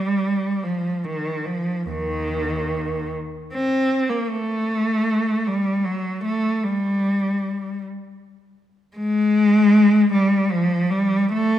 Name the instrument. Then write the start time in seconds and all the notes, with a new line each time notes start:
cello
Already playing: G3
0.64 F3
1.05 D#3
1.46 F3
1.91 D#2 D#3
3.54 C4
4.10 A#3
4.29 A3
5.47 G3
5.85 F#3
6.25 A3
6.64 G3
8.97 G#3
10.13 G3
10.51 F3
10.91 G3
11.33 A3